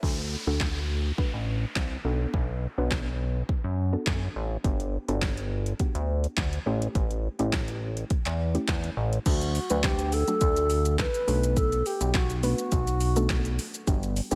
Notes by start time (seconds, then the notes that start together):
0.03 D2 A3 D4 F#4 A4, kick, downlifter
0.47 D2 A3 D4 F#4 A4
0.60 kick, snare, clap
1.18 A3 D4 F#4 B4, kick
1.34 A1
1.76 C2, kick, snare, clap
2.04 B1 B3 D4 F#4 A4
2.34 B1, kick
2.78 B1 B3 D4 F#4 B4
2.91 kick, snare, clap
3.49 kick
3.64 F#2
3.93 B3 D4 F#4 A4
4.07 F#2, kick, snare, clap
4.35 A1
4.64 G1 B3 D4 F#4 G4, kick, closed hi-hat
4.80 closed hi-hat
5.08 G1 B3 D4 F#4 A4, closed hi-hat
5.22 kick, snare, clap, closed hi-hat
5.37 closed hi-hat
5.66 closed hi-hat
5.79 B3 D4 F#4 G4, kick, closed hi-hat
5.95 D2, closed hi-hat
6.24 closed hi-hat
6.37 D2, kick, snare, clap, closed hi-hat
6.53 closed hi-hat
6.66 A1 A3 C#4 E4 G4
6.82 closed hi-hat
6.95 A1, kick, closed hi-hat
7.11 closed hi-hat
7.39 A1 A3 C#4 E4 G4, closed hi-hat
7.53 kick, snare, clap, closed hi-hat
7.68 closed hi-hat
7.97 closed hi-hat
8.10 kick, closed hi-hat
8.26 E2, clap, closed hi-hat
8.54 A3 C#4 E4 G4, closed hi-hat
8.68 E2, kick, snare, clap, closed hi-hat
8.84 closed hi-hat
8.97 A1
9.13 closed hi-hat
9.26 D2 F#3 A3 D4 F#4 A4, kick, closed hi-hat, crash, shaker
9.41 closed hi-hat, shaker
9.55 open hi-hat, shaker
9.70 D2 F#3 A3 D4 F#4 B4, closed hi-hat, shaker
9.83 G4, kick, snare, clap, closed hi-hat, shaker
9.99 closed hi-hat, shaker
10.12 A4, open hi-hat, shaker
10.28 F#3 A3 D4 F#4 A4, closed hi-hat, shaker
10.41 D2, kick, closed hi-hat, shaker
10.56 closed hi-hat, shaker
10.70 open hi-hat, shaker
10.85 closed hi-hat, shaker
10.99 B4, kick, snare, clap, closed hi-hat, shaker
11.14 closed hi-hat, shaker
11.27 B1 A3 B3 D4 F#4 A4, open hi-hat, shaker
11.43 closed hi-hat, shaker
11.57 A4, kick, closed hi-hat, shaker
11.72 closed hi-hat, shaker
11.86 G4, open hi-hat, shaker
12.01 B1, closed hi-hat, shaker
12.14 F#4, kick, snare, clap, closed hi-hat, shaker
12.30 closed hi-hat, shaker
12.43 A3 B3 D4 F#4 B4, open hi-hat, shaker
12.58 closed hi-hat, shaker
12.72 B1, kick, closed hi-hat, shaker
12.87 closed hi-hat, shaker
13.00 open hi-hat, shaker
13.16 A3 B3 D4 F#4 A4, closed hi-hat, shaker
13.30 kick, snare, clap, closed hi-hat, shaker
13.45 closed hi-hat, shaker
13.59 open hi-hat, shaker
13.74 closed hi-hat, shaker
13.87 G1 G3 B3 D4 F#4 G4, kick, closed hi-hat, shaker
14.03 closed hi-hat, shaker
14.16 open hi-hat, shaker
14.31 G1 G3 B3 D4 F#4 G4, closed hi-hat, shaker